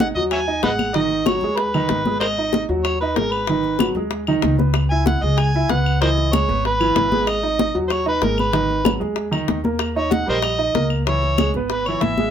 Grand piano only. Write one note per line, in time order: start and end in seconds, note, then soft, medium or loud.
0.00 0.10 D#5 medium
0.16 0.42 F#3 medium
0.16 0.43 F#4 medium
0.48 0.61 D#4 medium
0.48 0.61 D#5 medium
0.63 0.89 G#3 medium
0.63 0.89 G#4 medium
0.95 1.21 D#3 medium
0.95 1.21 D#4 medium
1.28 1.40 F#3 medium
1.28 1.41 F#4 medium
1.44 1.69 G#3 medium
1.44 1.69 G#4 medium
1.75 2.00 D#3 loud
1.75 2.00 D#4 medium
2.07 2.32 G#3 medium
2.07 2.32 G#4 medium
2.38 2.64 D#4 medium
2.38 2.64 D#5 medium
2.69 2.95 F#3 medium
2.69 2.95 F#4 medium
3.02 3.14 D#4 medium
3.02 3.15 D#5 medium
3.18 3.43 G#3 medium
3.18 3.43 G#4 medium
3.49 3.75 D#3 medium
3.49 3.75 D#4 medium
3.81 3.94 F#3 medium
3.81 3.94 F#4 medium
3.97 4.22 G#3 medium
3.97 4.22 G#4 medium
4.28 4.54 D#3 medium
4.28 4.54 D#4 medium
4.58 4.84 B3 medium
4.58 4.85 B4 medium
4.91 5.17 E4 medium
4.91 5.17 E5 medium
5.23 5.49 G#3 medium
5.23 5.49 G#4 medium
5.55 5.68 E4 medium
5.55 5.68 E5 medium
5.71 5.96 B3 medium
5.71 5.96 B4 medium
6.02 6.28 E3 medium
6.02 6.28 E4 medium
6.34 6.46 G#3 medium
6.34 6.47 G#4 medium
6.49 6.74 B3 medium
6.49 6.75 B4 medium
6.80 7.06 E3 medium
6.80 7.06 E4 medium
7.12 7.38 G#3 medium
7.12 7.38 G#4 medium
7.43 7.69 D#4 medium
7.43 7.69 D#5 medium
7.74 8.01 F#3 medium
7.74 8.01 F#4 medium
8.06 8.19 D#4 medium
8.06 8.19 D#5 medium
8.22 8.48 G#3 medium
8.22 8.48 G#4 medium
8.53 8.79 D#3 medium
8.53 8.80 D#4 medium
8.85 8.98 F#3 medium
8.85 8.99 F#4 medium
9.00 9.26 G#3 medium
9.00 9.27 G#4 medium
9.31 9.58 D#3 medium
9.31 9.58 D#4 medium
9.64 9.90 A#3 medium
9.64 9.91 A#4 medium
9.96 10.22 D#4 medium
9.96 10.22 D#5 medium
10.27 10.53 G3 medium
10.27 10.54 G4 medium
10.58 10.72 D#4 medium
10.58 10.72 D#5 medium
10.74 11.01 A#3 medium
10.74 11.01 A#4 medium
11.08 11.33 E3 medium
11.08 11.33 E4 medium
11.39 11.52 G#3 medium
11.39 11.52 G#4 medium
11.56 11.81 B3 medium
11.56 11.82 B4 medium
11.88 12.13 E3 medium
11.88 12.13 E4 medium
12.19 12.30 G#3 medium
12.19 12.30 G#4 medium